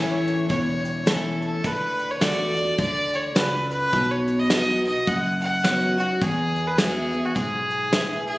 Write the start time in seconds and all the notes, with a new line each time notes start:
Already playing: A1 A2 E3 A3 C#4 E4 A4 C#5
0.28 closed hi-hat
0.49 E1 E2 C#5, kick, closed hi-hat
0.85 closed hi-hat
1.06 E3 A3 C#4 E4 A4 C#5, snare, closed hi-hat
1.42 A4, closed hi-hat
1.64 D2 D3 B4, kick, closed hi-hat
1.99 closed hi-hat
2.11 C#5
2.20 E2 D3 A3 D4 F#4 A4 D5, snare, closed hi-hat
2.55 D4 F#4, closed hi-hat
2.78 D2 D3 D5, kick, closed hi-hat
3.13 C#5, closed hi-hat
3.35 C#2 C#3 F#4 A4 B4 D5, snare, closed hi-hat
3.71 B4, closed hi-hat
3.93 B1 B2, kick, closed hi-hat
4.11 C#5
4.28 closed hi-hat
4.40 D#5
4.50 F#3 B3 D#4 F#4 B4 D#5, snare, closed hi-hat
4.84 D#4 F#4 D#5, closed hi-hat
5.07 F#1 F#2 F#5, kick, closed hi-hat
5.42 F#5, closed hi-hat
5.63 F#3 B3 D#4 F#4 B4 C#5, snare, closed hi-hat
5.98 D#4 F#4, closed hi-hat
6.21 E2 G#4, kick, closed hi-hat
6.56 closed hi-hat
6.67 B4
6.78 E3 G#3 B3 F#4 G#4 B4 E5, snare, closed hi-hat
7.12 B3 F#4, closed hi-hat
7.25 F#4
7.35 B1 G#2 G#4, kick, closed hi-hat
7.70 closed hi-hat
7.92 A2 G#4 B4 E5, snare, closed hi-hat
8.27 G#4, closed hi-hat